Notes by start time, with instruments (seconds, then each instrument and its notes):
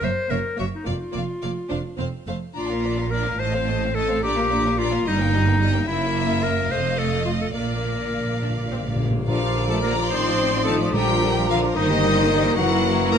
0.01 double bass section F#1, cello section F#2, viola section A#3, clarinet C5, violin section C#5 E5
0.29 double bass section F#1, cello section F#2, viola section A#3, clarinet A#4, violin section C#5 E5
0.57 double bass section F#1, cello section F#2, viola section A#3, clarinet F#4, violin section C#5 E5
0.74 clarinet D#4
0.84 double bass section F1, cello section F2, viola section A#3, clarinet F4, violin section D5 F5
1.13 double bass section F1, cello section F2, viola section A#3, violin section D5 F5
1.41 double bass section F1, cello section F2, viola section A#3, violin section D5 F5
1.69 double bass section F1, cello section F2, viola section D4, violin section C5 F5
1.97 double bass section F1, cello section F2, viola section C4, violin section C5 F5
2.26 double bass section F1, cello section F2, viola section A3, violin section C5 F5
2.54 double bass section A#1, cello section A#2, viola section D4, clarinet F4, violin section D5 A#5
2.69 viola section A#3, violin section A#4 F5
2.82 viola section D4, violin section D5 A#5
2.96 viola section A#3, violin section A#4 F5
3.11 viola section D4, clarinet A#4, violin section D5 A#5
3.24 viola section A#3, violin section A#4 F5
3.39 double bass section A1, cello section A2, viola section A3, clarinet C5, violin section D#5 A5
3.53 viola section C4, violin section C5 F5
3.67 viola section A3, violin section D#5 A5
3.80 viola section C4, violin section C5 F5
3.94 viola section A3, clarinet A4, violin section D#5 A5
4.08 viola section C4, violin section C5 F5
4.22 double bass section A#1, cello section A#2, viola section D4, clarinet G4, violin section D5 A#5
4.36 viola section A#3, violin section A#4 F5
4.50 viola section D4, violin section D5 A#5
4.64 viola section A#3, violin section A#4 F5
4.78 viola section D4, clarinet F4, violin section D5 A#5
4.91 viola section A#3, violin section A#4 F5
5.05 double bass section G1, cello section G2, viola section G3, clarinet D#4, violin section D#5 A#5
5.18 viola section A#3, violin section A#4 G5
5.32 viola section G3, violin section D#5 A#5
5.46 viola section A#3, violin section A#4 G5
5.59 viola section G3, violin section D#5 A#5
5.73 viola section A#3, violin section A#4 G5
5.86 double bass section F#1, cello section F#2, viola section A#3, clarinet E4, violin section E5
6.43 clarinet A#4
6.69 double bass section F1, cello section F2, viola section A3, clarinet C5, violin section D#5 F5
6.98 clarinet A4
7.25 clarinet F4
7.41 clarinet A4
7.54 double bass section A#1, cello section A#2, timpani A#2, viola section A#3, clarinet A#4, violin section D5 F5
7.63 timpani A#2
7.71 timpani A#2
7.78 timpani A#2
7.86 timpani A#2
7.94 timpani A#2
8.02 timpani A#2
8.10 timpani A#2
8.18 timpani A#2
8.26 timpani A#2
8.33 timpani A#2
8.42 timpani A#2, viola section D4
8.50 timpani A#2
8.58 timpani A#2
8.65 timpani A#2
8.70 timpani A#2, viola section C4
8.81 timpani A#2
8.88 timpani A#2
8.96 timpani A#2, viola section A#3
9.04 timpani A#2
9.11 timpani A#2
9.19 timpani A#2
9.27 double bass section A#1, timpani A#2, viola section D3 D4, cello section F3, french horn section F3 D4, bassoon F3, clarinet F4, cor anglais A#4, violin section D5 F5, flute section D6
9.41 viola section F3 F4
9.56 viola section D3 D4
9.69 viola section F3 F4, cello section A3, clarinet A4, violin section A5
9.82 viola section D3 D4, cello section A#3, clarinet A#4, violin section A#5
9.97 viola section F3 F4
10.10 double bass section A1, viola section D#3 D#4, bassoon F3, cello section C4, french horn section D#4, clarinet C5, cor anglais C5, violin section C6, flute section D#6
10.26 viola section F3 F4
10.40 viola section D#3 D#4
10.54 viola section F3 F4
10.64 viola section D#3 D#4, cello section A3, clarinet A4, violin section A5
10.80 viola section F3 F4
10.92 double bass section A#1, timpani A#2, viola section D3 D4, bassoon F3, cello section G3, french horn section D4, clarinet G4, cor anglais A#4, violin section A#4 G5, flute section D6
11.07 viola section F3 F4
11.21 viola section D3 D4
11.35 viola section F3 F4
11.47 viola section D3 D4, cello section F3, clarinet F4, violin section F5
11.63 viola section F3 F4
11.76 double bass section G1, bassoon D#3, cello section D#3, viola section G3 D#4, french horn section A#3 D#4, clarinet D#4, cor anglais A#4, violin section C5 D#5, flute section D#6
11.89 viola section A#3 G4
12.05 viola section G3 D#4
12.19 viola section A#3 G4
12.32 viola section G3 D#4
12.45 viola section A#3 G4
12.56 double bass section F#1, bassoon E3, cello section F#3, viola section A#3 E4, french horn section E4, clarinet F#4, cor anglais A#4, violin section A#4 F#5, flute section C#6
13.13 cello section A#3, clarinet A#4, violin section A#5